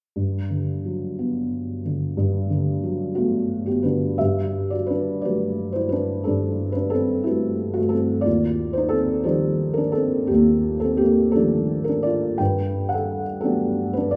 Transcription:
0.16 G2
0.50 D3
0.85 F#3
1.19 B3
1.86 D3
2.17 G2
2.50 D3
2.83 F#3
3.15 A3 B3 F#4
3.66 B3 G4
3.83 D3 D4 B4
4.18 G2 G4 E5
4.70 F#4 D5
4.86 D4 B4
5.21 F#3 G3 A3 F#4 B4 D5
5.72 E4 C5
5.89 D4 B4
6.24 G2 D4 A4
6.72 B4
6.76 D4
6.90 C4 A4
7.24 G3 A3 E4 F#4 B4
7.74 A3 F#4
7.89 A4
7.93 C4
8.21 D5
8.25 D#2 F4
8.73 C5
8.78 D#4
8.89 C4 A4
9.24 D#3 F3 G3 A4 C5 D5
9.28 D#4
9.74 D4 A#4
9.92 A4
9.97 C4
10.27 D#2 G4
10.32 A#3
10.80 C4 A4
10.97 G4
11.01 A#3
11.32 D#3 F3 G3 A4
11.36 A3 D4
11.84 A#4
11.89 D4
12.03 F4 D5
12.38 G2 B4 G5
12.89 F#5
12.94 A4
13.41 F#3 G3 A3 B3 A4
13.45 D4
13.93 B4
13.97 D4
14.11 D5

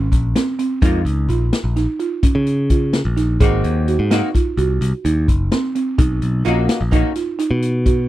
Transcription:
Already playing: C#4
0.12 A#1, kick, closed hi-hat
0.36 C4, snare, closed hi-hat
0.59 C4, closed hi-hat
0.82 F2 G#3 A#3 D#4 F4, kick, closed hi-hat
1.05 C#2, closed hi-hat
1.29 A#1 F4, closed hi-hat
1.53 snare, closed hi-hat
1.64 A#1
1.76 D#4, snare, closed hi-hat
2.00 F4, closed hi-hat
2.23 C#4, kick, closed hi-hat
2.35 C#3
2.46 closed hi-hat
2.70 F4, kick, closed hi-hat
2.93 snare, closed hi-hat
3.05 A#1
3.17 D#4, snare, closed hi-hat
3.40 G#1 A#3 C4 D#4 F#4 G#4, kick, closed hi-hat
3.64 D#2, closed hi-hat
3.88 F#4, closed hi-hat
3.99 G#2
4.11 A#3 C4 D#4 F#4, snare, closed hi-hat
4.34 F4, kick, closed hi-hat
4.57 C2 F#4, closed hi-hat
4.81 C2, closed hi-hat
5.05 D#2 D#4, closed hi-hat
5.28 F#1, kick, closed hi-hat
5.52 C4, snare, closed hi-hat
5.75 C4, closed hi-hat
5.98 B1 D#4, kick, closed hi-hat
6.22 B1, closed hi-hat
6.45 A#1 A#3 C#4 D#4 F4 F#4, closed hi-hat
6.69 snare, closed hi-hat
6.81 A#1
6.91 A#3 C#4 D#4 F#4, kick, closed hi-hat
7.15 F4, snare, closed hi-hat
7.39 D#4, closed hi-hat
7.51 B2
7.62 closed hi-hat
7.86 F#4, kick, closed hi-hat

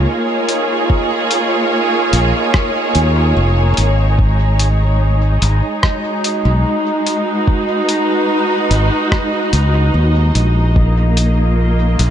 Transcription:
Already playing: A#3 D#4 F4 G#4 C#5 D#5
0.49 closed hi-hat
0.90 kick
1.31 closed hi-hat
2.13 A#1, closed hi-hat
2.54 kick, cross-stick
2.95 D#2, closed hi-hat
3.37 F1
3.77 G#1, closed hi-hat
4.18 G#3, kick
4.59 closed hi-hat
4.69 D#4
5.42 G#1, closed hi-hat
5.83 kick, cross-stick
5.91 F#4
6.24 closed hi-hat
6.45 B1
7.07 closed hi-hat
7.15 B4
7.48 kick
7.89 closed hi-hat
8.71 G#1, closed hi-hat
9.12 kick, cross-stick
9.53 C#2, closed hi-hat
9.94 D#2
10.35 A#1, closed hi-hat
10.76 A#3, kick
11.17 closed hi-hat
11.39 F4
11.99 A#1, closed hi-hat
12.05 G#4

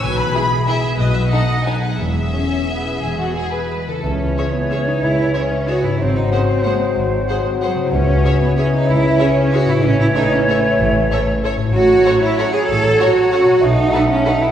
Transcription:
Already playing: E4
0.03 B1 B2 B4 G#5
0.20 G#3 B5
0.35 B3 E4 G#4
0.52 G#4
0.67 E4 G#4 E5
0.84 B3
0.98 B1 B2 B4 D#5
1.13 F#3 E5
1.29 B3 D#4 A4 D#5 F#5
1.49 A4
1.64 D#4 A4 B4 G#5
1.82 B3 F#5
1.97 E1 E2 E3 G#4 E5
2.15 B3
2.32 C#4 E4
2.51 B4
2.68 B3 G#4
2.85 E4
3.01 E1 E2 E3 G#4
3.18 B3 F#4
3.35 E4 G#4
3.52 B4
3.70 G#3 G#4
3.86 C#3 E4 A4
3.91 C#4
3.95 E4
4.00 C#2 E3 G#3 C#4 E4 G#4
4.04 C#5
4.37 G#4 C#5 E5
4.53 B3
4.70 C#4 G#4 C#5 E5
4.87 D#4
5.02 C#2 E4
5.34 C#4 G#4 C#5 E5
5.68 F#4 G#4 C#5 E5
5.82 G#2 E4
5.86 C4
5.90 F#4
5.95 F#3 C4 F#4 G#4 C5
5.99 G#1 C4
6.15 D#4
6.31 C#4 G#4 C5 F#5
6.49 C4
6.64 G#3 G#4 C5 F#5
6.96 G#1
7.29 G#4 C5 F#5
7.61 F#3 G#4 C5 F#5
7.75 C#3
7.79 C#4
7.84 E4
7.89 C#2 E3 C#4 G#4
7.93 C#4 C#5
8.24 G#4 C#5 E5
8.42 B3
8.57 C#4 E4 G#4 C#5 E5
8.74 D#4
8.89 C#2 E4
9.19 C#4 G#4 C#5 E5
9.52 F#4 G#4 C#5 E5
9.66 A2 E4
9.70 C#4
9.75 E4
9.79 C#4 E4 A4
9.83 A1 E3 C#4 C#5
9.99 E4
10.15 D#4 A4 C#5 E5
10.32 C#4
10.48 A3 A4 C#5 E5
10.80 A1
11.12 A4 C#5 E5
11.43 A4 C#5 E5
11.56 A2
11.61 C#4
11.66 F#4
11.70 A1 F#3 A4
11.75 F#4 C#5
12.04 C#4 F#4 A4 C#5 F#5
12.22 E4
12.37 C#4 F#4 A4 C#5 F#5
12.54 G#4
12.68 A1 A4
12.99 C#4 F#4 A4 C#5 F#5
13.32 C#4 F#4 A4 C#5 F#5
13.45 B2
13.49 B3
13.54 F#4
13.62 B1 A3 D#4 F#5
13.92 A3 F#4 A4 B4 F#5
14.10 C#4
14.25 A3 D#4 F#4 A4 B4 F#5
14.42 E4

